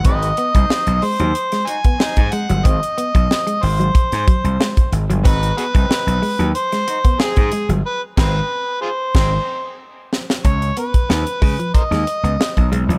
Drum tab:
CC |----------------|----------------|----------------|--x-----x-------|
HH |xxxx-xoxxxxx-xxx|xxxx-xoxxxxx-xxx|xxxx-xoxxxxx-xxx|----------------|
SD |----o----o--o---|----o----o--o---|----o----o--o---|--o-----o-----oo|
BD |o--o-------o-o--|o--o----o-o--o--|o--o-------o-o--|--o-----o-------|

CC |----------------|
HH |xxxx-xoxxxxx-xxx|
SD |----o----o--o---|
BD |o--o--o-o----o--|